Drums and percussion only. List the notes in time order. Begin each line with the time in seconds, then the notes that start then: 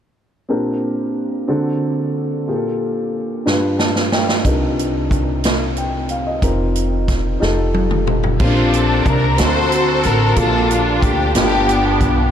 3.47 snare
3.79 snare
3.96 snare
4.12 snare
4.29 snare
4.45 kick, closed hi-hat
4.79 closed hi-hat
5.11 kick, closed hi-hat
5.44 snare, closed hi-hat
5.76 closed hi-hat
6.09 closed hi-hat
6.42 kick, closed hi-hat
6.75 closed hi-hat
7.08 kick, snare, closed hi-hat
7.42 snare
7.74 high tom
7.91 mid tom
8.07 mid tom
8.23 floor tom
8.40 kick, crash
8.73 closed hi-hat
9.06 kick, closed hi-hat
9.38 snare, closed hi-hat
9.72 closed hi-hat
10.03 closed hi-hat
10.36 kick, closed hi-hat
10.71 closed hi-hat
11.02 kick, closed hi-hat
11.35 snare, closed hi-hat
11.69 closed hi-hat
12.01 kick, closed hi-hat